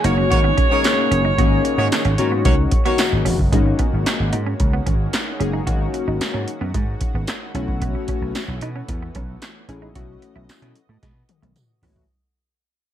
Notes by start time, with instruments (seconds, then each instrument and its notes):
Already playing: analog synth pad D#3 G#3 A#3 C#4 F#4
0.04 slap bass F#1, analog polysynth A#3 C#4 D#4 F#4, horn section A#3 F#4 C#5, clean electric guitar D#4, alto saxophone C#5, closed hi-hat
0.18 clean electric guitar C#4
0.31 slap bass G#1, horn section A#3 F#4 C#5, muted clean electric guitar stroke, kick, closed hi-hat
0.44 clean electric guitar B3
0.57 clean electric guitar C#4, kick, closed hi-hat
0.70 horn section A#3 F#4 C#5, analog polysynth A#3 C#4 D#4 G#4
0.84 muted clean electric guitar stroke, snare, clap, closed hi-hat, tambourine
1.11 slap bass F#1, clean electric guitar C#4, closed hi-hat
1.25 clean electric guitar D#4
1.38 slap bass G#1, analog polysynth A#3 C#4 D#4 G#4, clean electric guitar F#4, kick, closed hi-hat
1.65 muted clean electric guitar stroke, closed hi-hat
1.78 slap bass G#2, horn section A#3 F#4 C#5, clean electric guitar D#4
1.92 snare, clap, closed hi-hat, tambourine
2.05 slap bass G#1, clean electric guitar C#4, closed hi-hat
2.18 slap bass G#2, horn section A#3 F#4 C#5, analog polysynth A#3 C#4 D#4 F#4, muted clean electric guitar stroke, closed hi-hat
2.32 clean electric guitar B3
2.45 slap bass C#2, clean electric guitar G#3, horn section A#3 F#4 C#5, kick, closed hi-hat
2.71 muted clean electric guitar stroke, kick, closed hi-hat
2.85 analog polysynth A#3 C#4 D#4 F#4, horn section A#3 F#4 C#5, clean electric guitar B3, closed hi-hat
2.98 snare, clap, closed hi-hat, tambourine
3.13 slap bass G#1
3.25 slap bass E1, clean electric guitar C#4, open hi-hat
3.39 slap bass F#1, kick
3.52 slap bass G#1, analog synth pad D#3 G#3 A#3 C#4 F#4, clean electric guitar G#3, analog polysynth A#3 C#4 D#4 F#4, kick, closed hi-hat
3.66 muted clean electric guitar stroke
3.79 clean electric guitar B3, kick, closed hi-hat
3.93 slap bass G#1
4.06 muted clean electric guitar stroke, snare, clap, closed hi-hat, tambourine
4.20 slap bass G#1
4.33 slap bass G#2, clean electric guitar D#4, closed hi-hat
4.46 clean electric guitar C#4
4.60 slap bass C#2, muted clean electric guitar stroke, kick, closed hi-hat
4.73 clean electric guitar B3
4.86 slap bass G#1, clean electric guitar C#4, kick, closed hi-hat
5.13 muted clean electric guitar stroke, snare, clap, closed hi-hat, tambourine
5.40 slap bass F#1, analog polysynth A#3 C#4 D#4 G#4, clean electric guitar C#4, closed hi-hat
5.53 clean electric guitar D#4
5.67 slap bass G#1, analog polysynth A#3 C#4 D#4 F#4, clean electric guitar F#4, kick, closed hi-hat
5.94 muted clean electric guitar stroke, closed hi-hat
6.08 slap bass G#1, clean electric guitar D#4
6.21 muted slap bass stroke, snare, clap, closed hi-hat, tambourine
6.34 slap bass G#2, clean electric guitar C#4
6.47 muted clean electric guitar stroke, closed hi-hat
6.61 slap bass F#2, clean electric guitar B3
6.74 slap bass G#2, clean electric guitar G#3, kick, closed hi-hat
7.01 muted clean electric guitar stroke, kick, closed hi-hat
7.14 slap bass G#1, clean electric guitar B3
7.27 snare, clap, closed hi-hat, tambourine
7.54 slap bass B1, analog synth pad E3 A3 B3 C#4, analog polysynth A3 C#4 E4 F#4, clean electric guitar C#4, closed hi-hat
7.68 kick
7.82 clean electric guitar B3, kick, closed hi-hat
7.95 muted clean electric guitar stroke
8.08 clean electric guitar C#4, kick, closed hi-hat
8.21 slap bass B1
8.35 muted clean electric guitar stroke, snare, clap, closed hi-hat, tambourine
8.48 slap bass B1
8.61 slap bass B2, clean electric guitar D#4, closed hi-hat
8.76 clean electric guitar C#4
8.89 slap bass E2, muted clean electric guitar stroke, kick, closed hi-hat
9.03 clean electric guitar B3
9.15 slap bass B1, clean electric guitar C#4, kick, closed hi-hat
9.42 muted clean electric guitar stroke, snare, clap, closed hi-hat, tambourine
9.68 slap bass A1, analog polysynth A3 C#4 E4 G#4, clean electric guitar C#4, analog synth pad D#5, closed hi-hat
9.82 clean electric guitar D#4
9.95 slap bass B1, analog polysynth A3 C#4 E4 F#4, clean electric guitar F#4, kick, closed hi-hat
10.22 muted clean electric guitar stroke, closed hi-hat
10.36 slap bass B1, clean electric guitar E4
10.49 muted slap bass stroke, snare, clap, closed hi-hat, tambourine
10.62 slap bass B2, clean electric guitar C#4, closed hi-hat
10.75 muted clean electric guitar stroke, closed hi-hat
10.89 slap bass A2, clean electric guitar A3
11.03 slap bass B2, clean electric guitar G#3, kick, snare, closed hi-hat
11.29 muted clean electric guitar stroke, closed hi-hat, high tom
11.42 slap bass B1, clean electric guitar A3, closed hi-hat, high tom
11.56 closed hi-hat, mid tom, tambourine
11.82 slap bass A1, analog polysynth A3 C#4 E4 F#4, clean electric guitar B3, floor tom, open hi-hat
11.96 floor tom